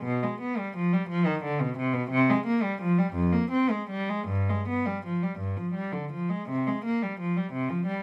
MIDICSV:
0, 0, Header, 1, 2, 480
1, 0, Start_track
1, 0, Key_signature, -3, "minor"
1, 0, Tempo, 688863
1, 26, Time_signature, 6, 3, 24, 8
1, 2424, Tempo, 775194
1, 3384, Tempo, 728155
1, 4344, Tempo, 697674
1, 5405, End_track
2, 0, Start_track
2, 0, Title_t, "Cello"
2, 0, Program_c, 0, 42
2, 27, Note_on_c, 0, 47, 65
2, 151, Note_off_c, 0, 47, 0
2, 163, Note_on_c, 0, 56, 54
2, 281, Note_off_c, 0, 56, 0
2, 283, Note_on_c, 0, 59, 54
2, 397, Note_off_c, 0, 59, 0
2, 404, Note_on_c, 0, 55, 54
2, 518, Note_off_c, 0, 55, 0
2, 533, Note_on_c, 0, 53, 54
2, 639, Note_off_c, 0, 53, 0
2, 649, Note_on_c, 0, 55, 49
2, 758, Note_off_c, 0, 55, 0
2, 760, Note_on_c, 0, 53, 63
2, 869, Note_off_c, 0, 53, 0
2, 876, Note_on_c, 0, 51, 55
2, 988, Note_off_c, 0, 51, 0
2, 1000, Note_on_c, 0, 50, 55
2, 1107, Note_off_c, 0, 50, 0
2, 1123, Note_on_c, 0, 47, 57
2, 1230, Note_off_c, 0, 47, 0
2, 1238, Note_on_c, 0, 48, 56
2, 1345, Note_off_c, 0, 48, 0
2, 1348, Note_on_c, 0, 47, 62
2, 1462, Note_off_c, 0, 47, 0
2, 1466, Note_on_c, 0, 48, 80
2, 1578, Note_off_c, 0, 48, 0
2, 1600, Note_on_c, 0, 56, 69
2, 1707, Note_off_c, 0, 56, 0
2, 1715, Note_on_c, 0, 58, 64
2, 1821, Note_off_c, 0, 58, 0
2, 1831, Note_on_c, 0, 55, 63
2, 1940, Note_off_c, 0, 55, 0
2, 1961, Note_on_c, 0, 53, 64
2, 2063, Note_off_c, 0, 53, 0
2, 2077, Note_on_c, 0, 55, 60
2, 2185, Note_off_c, 0, 55, 0
2, 2185, Note_on_c, 0, 41, 72
2, 2300, Note_off_c, 0, 41, 0
2, 2317, Note_on_c, 0, 58, 60
2, 2433, Note_off_c, 0, 58, 0
2, 2443, Note_on_c, 0, 60, 62
2, 2548, Note_off_c, 0, 60, 0
2, 2565, Note_on_c, 0, 56, 55
2, 2674, Note_off_c, 0, 56, 0
2, 2686, Note_on_c, 0, 55, 57
2, 2795, Note_off_c, 0, 55, 0
2, 2806, Note_on_c, 0, 56, 55
2, 2918, Note_on_c, 0, 43, 59
2, 2920, Note_off_c, 0, 56, 0
2, 3035, Note_off_c, 0, 43, 0
2, 3053, Note_on_c, 0, 56, 47
2, 3163, Note_off_c, 0, 56, 0
2, 3170, Note_on_c, 0, 59, 50
2, 3276, Note_off_c, 0, 59, 0
2, 3278, Note_on_c, 0, 55, 49
2, 3387, Note_off_c, 0, 55, 0
2, 3402, Note_on_c, 0, 53, 44
2, 3509, Note_off_c, 0, 53, 0
2, 3516, Note_on_c, 0, 55, 44
2, 3622, Note_on_c, 0, 43, 47
2, 3627, Note_off_c, 0, 55, 0
2, 3737, Note_off_c, 0, 43, 0
2, 3739, Note_on_c, 0, 53, 43
2, 3853, Note_on_c, 0, 55, 42
2, 3860, Note_off_c, 0, 53, 0
2, 3971, Note_on_c, 0, 50, 41
2, 3976, Note_off_c, 0, 55, 0
2, 4099, Note_off_c, 0, 50, 0
2, 4107, Note_on_c, 0, 53, 39
2, 4218, Note_on_c, 0, 56, 45
2, 4224, Note_off_c, 0, 53, 0
2, 4339, Note_off_c, 0, 56, 0
2, 4347, Note_on_c, 0, 48, 60
2, 4463, Note_off_c, 0, 48, 0
2, 4472, Note_on_c, 0, 56, 52
2, 4588, Note_off_c, 0, 56, 0
2, 4596, Note_on_c, 0, 58, 52
2, 4708, Note_off_c, 0, 58, 0
2, 4717, Note_on_c, 0, 55, 49
2, 4830, Note_off_c, 0, 55, 0
2, 4836, Note_on_c, 0, 53, 50
2, 4946, Note_off_c, 0, 53, 0
2, 4952, Note_on_c, 0, 55, 46
2, 5059, Note_on_c, 0, 48, 53
2, 5064, Note_off_c, 0, 55, 0
2, 5175, Note_off_c, 0, 48, 0
2, 5177, Note_on_c, 0, 53, 49
2, 5291, Note_on_c, 0, 55, 52
2, 5298, Note_off_c, 0, 53, 0
2, 5405, Note_off_c, 0, 55, 0
2, 5405, End_track
0, 0, End_of_file